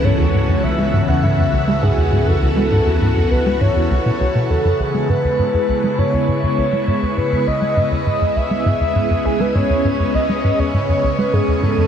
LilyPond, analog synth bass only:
\new Staff \with { instrumentName = "Analog synth bass" } { \clef bass \time 4/4 \key cis \minor \tempo 4 = 101 gis,16 e,16 gis,16 fis,16 cis,16 gis16 gis,16 e,16 gis,16 fis,16 cis,16 gis16 gis,16 e,16 gis,16 fis,16 | cis,16 gis16 gis,16 e,16 gis,16 fis,16 cis,16 gis16 gis,16 e,16 cis,16 b,16 cis,16 b,16 e,16 fis,16 | cis,16 gis16 gis,16 e,16 gis,16 fis,16 cis,16 gis16 gis,16 e,16 gis,16 fis,16 cis,16 gis16 gis,16 e,16 | gis,16 fis,16 cis,16 gis16 gis,16 e,16 gis,16 fis,16 cis,16 gis16 gis,16 e,16 gis,16 fis,16 cis,16 gis16 |
gis,16 e,16 gis,16 fis,16 cis,16 gis16 gis,16 e,16 gis,16 fis,16 cis,16 gis16 gis,16 e,16 gis,16 fis,16 | }